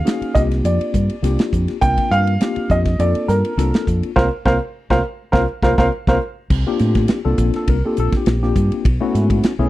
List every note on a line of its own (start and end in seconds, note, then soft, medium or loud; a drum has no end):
0.00 0.37 F5 medium
0.05 0.33 A#3 medium
0.05 0.35 C#4 medium
0.05 0.35 D#4 medium
0.05 0.35 F#4 medium
0.05 0.35 G#4 medium
0.05 snare loud
0.05 hi-hat pedal medium
0.05 ride medium
0.21 muted fingered electric bass stroke soft
0.21 ride medium
0.35 0.60 C2 medium
0.35 1.14 A#3 medium
0.35 1.14 C4 medium
0.35 1.14 D4 medium
0.35 1.14 F4 medium
0.35 1.14 G4 medium
0.35 0.41 D#5 medium
0.35 kick medium
0.35 hi-hat pedal medium
0.51 snare soft
0.51 ride medium
0.64 0.78 F2 medium
0.64 1.49 D5 medium
0.64 hi-hat pedal medium
0.64 ride medium
0.80 muted fingered electric bass stroke soft
0.80 ride medium
0.94 1.07 G2 medium
0.94 kick medium
0.94 hi-hat pedal medium
1.09 ride medium
1.22 1.36 C2 medium
1.22 1.75 A#3 medium
1.22 1.75 C4 medium
1.22 1.76 D4 medium
1.22 1.76 F4 medium
1.22 1.76 G4 medium
1.22 snare soft
1.22 hi-hat pedal medium
1.22 ride medium
1.39 snare medium
1.39 ride medium
1.53 1.66 F2 medium
1.53 kick medium
1.53 hi-hat pedal medium
1.68 muted fingered electric bass stroke soft
1.68 snare soft
1.68 ride medium
1.81 1.95 C2 medium
1.81 2.34 A#3 medium
1.81 2.34 C4 medium
1.81 2.34 D4 medium
1.81 2.34 F4 medium
1.81 2.34 A#4 medium
1.81 2.12 G5 loud
1.81 kick loud
1.81 hi-hat pedal medium
1.81 ride medium
1.97 kick medium
1.97 ride medium
2.11 2.36 G2 medium
2.11 2.72 F5 medium
2.11 hi-hat pedal medium
2.27 ride medium
2.40 2.93 A#3 medium
2.40 2.93 C4 medium
2.40 2.93 D4 medium
2.40 2.93 F4 medium
2.40 2.93 G4 medium
2.40 snare loud
2.40 hi-hat pedal medium
2.40 ride medium
2.56 muted fingered electric bass stroke soft
2.56 ride medium
2.70 2.95 F2 medium
2.70 3.00 D#5 medium
2.70 kick medium
2.70 hi-hat pedal medium
2.85 kick medium
2.85 snare soft
2.85 ride medium
2.99 3.13 F2 medium
2.99 3.51 A#3 medium
2.99 3.52 C4 medium
2.99 3.51 D4 medium
2.99 3.52 F4 medium
2.99 3.52 A4 medium
2.99 3.29 D5 medium
2.99 hi-hat pedal medium
2.99 ride medium
3.15 muted fingered electric bass stroke soft
3.15 ride medium
3.28 3.42 G2 medium
3.28 3.83 A#4 medium
3.28 snare soft
3.28 hi-hat pedal medium
3.45 ride medium
3.57 3.71 C2 medium
3.57 4.10 A#3 medium
3.57 4.10 C4 medium
3.57 4.10 D4 medium
3.57 4.10 F4 medium
3.57 4.10 A4 medium
3.57 snare soft
3.57 hi-hat pedal medium
3.57 ride medium
3.74 snare medium
3.74 ride soft
3.87 4.01 F2 medium
3.87 kick medium
3.87 hi-hat pedal medium
4.03 muted fingered electric bass stroke soft
4.03 ride medium
4.16 4.28 C2 medium
4.16 4.27 A#3 medium
4.16 4.27 C4 medium
4.16 4.26 F4 medium
4.16 4.26 A#4 medium
4.16 4.26 C5 medium
4.16 4.26 F5 medium
4.16 kick medium
4.16 snare medium
4.45 4.57 C2 medium
4.45 4.56 A#3 medium
4.45 4.55 C4 medium
4.45 4.56 F4 medium
4.45 4.56 A#4 medium
4.45 4.56 C5 medium
4.45 4.56 F5 medium
4.45 kick medium
4.45 snare medium
4.90 5.01 C2 medium
4.90 4.99 A#3 medium
4.90 4.99 C4 medium
4.90 4.99 F4 medium
4.90 4.99 A#4 medium
4.90 4.99 C5 medium
4.90 5.00 F5 medium
4.90 kick medium
4.90 snare medium
5.32 5.45 C2 medium
5.32 5.43 A#3 medium
5.32 5.43 C4 medium
5.32 5.43 F4 medium
5.32 5.43 A#4 medium
5.32 5.43 C5 medium
5.32 5.43 F5 medium
5.32 kick medium
5.32 snare medium
5.62 5.74 C2 medium
5.62 5.73 A#3 medium
5.62 5.73 C4 medium
5.62 5.73 F4 medium
5.62 5.73 A#4 medium
5.62 5.73 C5 medium
5.62 5.73 F5 medium
5.62 kick medium
5.62 snare medium
5.78 5.88 C2 medium
5.78 5.87 A#3 medium
5.78 5.87 C4 medium
5.78 5.87 F4 medium
5.78 5.87 A#4 medium
5.78 5.87 C5 medium
5.78 5.87 F5 medium
5.78 kick medium
5.78 snare medium
6.07 6.17 C2 medium
6.07 6.16 A#3 medium
6.07 6.16 C4 medium
6.07 6.16 F4 medium
6.07 6.17 A#4 medium
6.07 6.17 C5 medium
6.07 6.17 F5 medium
6.07 kick medium
6.07 snare medium
6.50 6.64 C2 medium
6.50 kick loud
6.50 crash medium
6.67 7.18 A#3 medium
6.67 7.18 C4 medium
6.67 7.18 D4 medium
6.67 7.18 F4 medium
6.67 7.18 G4 medium
6.79 7.05 A2 medium
6.79 snare soft
6.79 hi-hat pedal medium
6.79 ride medium
6.95 kick medium
6.95 snare soft
6.95 ride medium
7.08 snare loud
7.08 ride medium
7.25 7.37 C2 medium
7.25 7.76 A#3 medium
7.25 7.76 C4 medium
7.25 7.76 D4 medium
7.25 7.76 F4 medium
7.25 7.55 A4 medium
7.38 7.52 A#1 medium
7.38 kick medium
7.38 hi-hat pedal medium
7.38 ride medium
7.54 7.68 A4 medium
7.54 muted fingered electric bass stroke soft
7.54 snare soft
7.54 ride medium
7.68 7.81 C2 medium
7.68 7.84 A#4 medium
7.68 kick medium
7.68 ride medium
7.85 8.36 A#3 medium
7.85 8.35 C4 medium
7.85 8.35 D4 medium
7.85 8.36 F4 medium
7.85 7.98 G4 medium
7.85 7.98 A4 medium
7.97 8.11 A#1 medium
7.97 8.13 A4 medium
7.97 hi-hat pedal medium
7.97 ride medium
8.12 kick medium
8.12 snare soft
8.12 ride medium
8.17 8.42 G4 medium
8.26 8.52 A#1 medium
8.26 snare loud
8.26 ride medium
8.42 8.85 A#3 medium
8.42 8.85 C4 medium
8.42 8.85 D4 medium
8.42 8.85 F4 medium
8.42 8.85 G4 medium
8.42 snare soft
8.56 8.69 G2 medium
8.56 kick medium
8.56 hi-hat pedal medium
8.56 ride medium
8.72 muted fingered electric bass stroke soft
8.72 ride medium
8.85 8.98 B1 medium
8.85 kick loud
8.85 ride medium
9.00 9.52 A3 medium
9.00 9.52 B3 medium
9.00 9.52 C#4 medium
9.00 9.52 E4 medium
9.00 9.52 F#4 loud
9.15 9.39 G#2 medium
9.15 snare soft
9.15 hi-hat pedal medium
9.15 ride medium
9.30 kick medium
9.30 ride medium
9.43 snare loud
9.43 ride medium
9.59 9.69 B1 medium
9.59 9.69 A3 medium
9.59 9.69 B3 medium
9.59 9.69 C#4 medium
9.59 9.69 E4 medium
9.59 9.69 G#4 medium